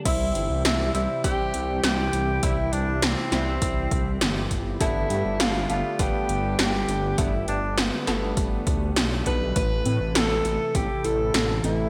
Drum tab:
CC |x-------|--------|--------|--------|
HH |xxxxxxxx|xxxxxxxx|xxxxxxxx|xxxxxxxx|
SD |--o---o-|--oo--o-|--o---o-|--oo--o-|
BD |o---o---|o---oo-o|o---o---|o---oo-o|

CC |--------|
HH |xxxxxxxx|
SD |--o---o-|
BD |o---o---|